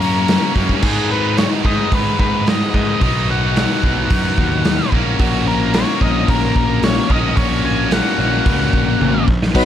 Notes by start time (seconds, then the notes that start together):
Already playing: F#2 A#4
0.02 F#2 C#3 F#3 A#3 C#4 F#4, open hi-hat
0.28 F#2 C#3 F#3 A#3 C#4 F#4, snare, open hi-hat
0.55 F#2 C#3 F#3 A#3 C#4 F#4, kick, open hi-hat
0.69 G2, kick
0.82 G#2 D#3 G#3 B3 D#4 G#4, kick, crash
0.87 B4
1.11 B4
1.37 C#5, snare, open hi-hat
1.64 G#2 D#3 G#3 B3 D#4 B4 D#5, kick
1.92 G#2 B4, kick, open hi-hat
2.19 G#2 B4, kick
2.47 D#5, snare, open hi-hat
2.74 G#2 D#5, kick
3.00 B1 B2 D#3 F#3 B3 D#4 B4 D#5, kick, open hi-hat
3.31 F#5
3.56 F#5, snare, open hi-hat
3.82 B1 B2 D#3 F#3 B3 D#4 B4, kick
4.10 F#2, kick, open hi-hat
4.38 D#2, kick
4.64 snare, open hi-hat
4.92 A#1 A#2 F#3 A#3 C#4 F#4 A#4, kick
5.19 A#1 F#4, kick, open hi-hat
5.48 A#4
5.74 A#3 C#4 F#4 A#4 C#5, snare, open hi-hat
6.01 A#1 D#5, kick
6.28 A#1 A#4, kick, open hi-hat
6.56 A#1 A#4, kick
6.83 C#5, snare, open hi-hat
7.08 A#1 A#2 F#3 A#3 C#4 F#4 A#4 D#5, kick
7.37 A#1 C#5, kick, open hi-hat
7.65 G#5
7.91 A#3 C#4 F#4 A#4 F#5, snare, open hi-hat
8.18 A#1
8.46 C#2, kick, open hi-hat
8.73 A#1, kick
9.00 G#1, high tom
9.28 A#1, kick
9.42 snare
9.54 B1 B2 D#3 F#3 B3 D#4 F#4 B4, kick, crash